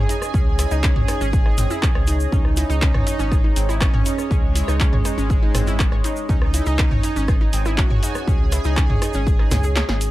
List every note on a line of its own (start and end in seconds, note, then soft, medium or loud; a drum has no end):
0.00 10.11 C#4 medium
0.00 0.30 G#4 medium
0.00 10.11 G#4 medium
0.00 10.11 C#5 medium
0.00 10.11 D#5 medium
0.00 2.31 G#5 medium
0.09 0.14 D#4 medium
0.09 open hi-hat medium
0.09 shaker loud
0.22 cross-stick medium
0.22 shaker medium
0.34 0.66 C#2 loud
0.34 0.39 C#4 medium
0.34 2.23 G#4 loud
0.34 kick loud
0.34 shaker soft
0.59 0.62 E4 medium
0.59 cross-stick medium
0.59 open hi-hat loud
0.59 shaker loud
0.71 1.03 C#2 loud
0.71 0.79 D#4 loud
0.71 shaker medium
0.83 0.89 C#4 loud
0.83 kick loud
0.83 clap loud
0.83 shaker soft
0.96 1.04 C#5 medium
0.96 mid tom medium
1.08 1.16 D#4 medium
1.08 cross-stick medium
1.08 open hi-hat medium
1.08 shaker medium
1.21 1.52 G#1 medium
1.21 1.29 C#4 loud
1.21 shaker medium
1.33 1.38 G#4 medium
1.33 kick loud
1.33 shaker soft
1.46 1.51 D#4 medium
1.46 cross-stick medium
1.58 1.67 G#1 loud
1.58 1.61 C4 medium
1.58 mid tom medium
1.58 open hi-hat loud
1.58 shaker loud
1.70 1.74 E4 loud
1.70 shaker medium
1.83 1.91 C#4 medium
1.83 kick loud
1.83 clap loud
1.83 shaker soft
1.95 2.27 C#2 medium
1.95 2.03 C#5 medium
1.95 cross-stick medium
2.07 2.13 D#4 medium
2.07 open hi-hat medium
2.07 shaker medium
2.20 shaker medium
2.32 2.64 C#2 loud
2.32 2.38 C#4 medium
2.32 3.71 D#4 loud
2.32 6.28 C#5 medium
2.32 kick loud
2.32 shaker soft
2.45 cross-stick medium
2.57 2.60 E4 medium
2.57 open hi-hat loud
2.57 shaker medium
2.70 3.01 C#2 loud
2.70 2.77 D#4 loud
2.70 shaker medium
2.82 2.87 C#4 loud
2.82 kick loud
2.82 clap loud
2.82 shaker soft
2.94 3.02 C#5 medium
2.94 cross-stick medium
2.94 mid tom medium
3.07 3.15 D#4 medium
3.07 open hi-hat medium
3.07 shaker loud
3.19 3.51 G#1 medium
3.19 3.27 C#4 loud
3.19 shaker soft
3.32 3.37 G#4 medium
3.32 kick loud
3.32 cross-stick medium
3.32 shaker soft
3.44 3.49 D#4 medium
3.56 3.88 G#1 loud
3.56 3.60 C4 medium
3.56 open hi-hat loud
3.56 shaker loud
3.69 3.72 E4 loud
3.69 shaker medium
3.81 3.89 C#4 medium
3.81 4.27 C#4 loud
3.81 kick loud
3.81 cross-stick medium
3.81 clap loud
3.81 shaker soft
3.94 4.03 G#1 medium
3.94 4.01 C#5 medium
3.94 mid tom medium
4.06 4.11 D#4 medium
4.06 open hi-hat medium
4.06 shaker loud
4.18 cross-stick medium
4.18 shaker medium
4.31 4.62 C#2 loud
4.31 6.19 G#3 loud
4.31 4.36 C#4 medium
4.31 kick loud
4.31 shaker soft
4.56 4.59 E4 medium
4.56 open hi-hat loud
4.56 shaker loud
4.68 5.00 C#2 loud
4.68 4.76 D#4 loud
4.68 cross-stick medium
4.68 shaker medium
4.80 4.86 C#4 loud
4.80 kick loud
4.80 clap loud
4.80 shaker soft
4.93 5.01 C#5 medium
4.93 mid tom loud
5.05 5.13 D#4 medium
5.05 cross-stick medium
5.05 open hi-hat medium
5.05 shaker loud
5.18 5.49 G#1 medium
5.18 5.25 C#4 loud
5.18 shaker soft
5.30 5.35 G#4 medium
5.30 kick loud
5.30 shaker soft
5.43 5.48 D#4 medium
5.55 5.86 G#1 loud
5.55 5.58 C4 medium
5.55 cross-stick medium
5.55 mid tom medium
5.55 open hi-hat loud
5.55 shaker loud
5.67 5.70 E4 loud
5.67 shaker soft
5.79 5.87 C#4 medium
5.79 kick loud
5.79 clap loud
5.79 shaker soft
5.92 6.01 G#1 medium
5.92 6.00 C#5 medium
5.92 cross-stick medium
6.04 6.10 D#4 medium
6.04 open hi-hat medium
6.04 shaker medium
6.16 shaker soft
6.29 6.61 C#2 loud
6.29 6.34 C#4 medium
6.29 7.68 D#4 loud
6.29 10.11 G#5 medium
6.29 kick loud
6.29 shaker soft
6.42 cross-stick medium
6.54 6.57 E4 medium
6.54 open hi-hat loud
6.54 shaker medium
6.66 6.98 C#2 loud
6.66 6.74 D#4 loud
6.66 shaker soft
6.78 6.84 C#4 loud
6.78 kick loud
6.78 cross-stick medium
6.78 clap loud
6.78 shaker soft
6.91 6.99 C#5 medium
6.91 mid tom loud
7.03 7.11 D#4 medium
7.03 open hi-hat medium
7.03 shaker medium
7.16 7.48 G#1 medium
7.16 7.24 C#4 loud
7.16 shaker medium
7.28 7.34 G#4 medium
7.28 kick loud
7.28 cross-stick medium
7.28 shaker soft
7.41 7.46 D#4 medium
7.53 7.85 G#1 loud
7.53 7.56 C4 medium
7.53 open hi-hat loud
7.53 shaker medium
7.65 7.69 E4 loud
7.65 cross-stick medium
7.65 shaker soft
7.78 7.86 C#4 medium
7.78 8.24 F#4 loud
7.78 kick loud
7.78 clap loud
7.78 shaker soft
7.90 7.99 G#1 medium
7.90 7.98 C#5 medium
7.90 mid tom loud
8.03 8.08 D#4 medium
8.03 open hi-hat medium
8.03 shaker medium
8.15 cross-stick medium
8.15 shaker soft
8.28 8.59 C#2 loud
8.28 8.33 C#4 medium
8.28 10.11 G#4 loud
8.28 kick loud
8.28 shaker soft
8.52 8.55 E4 medium
8.52 cross-stick medium
8.52 open hi-hat loud
8.52 shaker medium
8.64 8.96 C#2 loud
8.64 8.72 D#4 loud
8.64 shaker soft
8.77 8.82 C#4 loud
8.77 kick loud
8.77 clap loud
8.77 shaker soft
8.90 8.97 C#5 medium
8.90 mid tom loud
9.02 9.10 D#4 medium
9.02 cross-stick medium
9.02 open hi-hat medium
9.02 shaker medium
9.13 9.46 G#1 loud
9.13 9.22 C#4 loud
9.13 shaker soft
9.27 9.32 G#4 medium
9.27 kick loud
9.27 shaker soft
9.39 9.44 D#4 medium
9.39 cross-stick medium
9.51 9.83 C#2 loud
9.51 9.59 G#4 medium
9.51 snare medium
9.51 mid tom medium
9.51 open hi-hat loud
9.51 shaker medium
9.63 9.69 G#4 medium
9.63 shaker medium
9.76 9.81 C#5 medium
9.76 snare medium
9.76 clap loud
9.76 shaker soft
9.89 10.11 G#1 loud
9.89 9.96 G#4 medium
9.89 snare medium
10.01 open hi-hat medium
10.01 shaker medium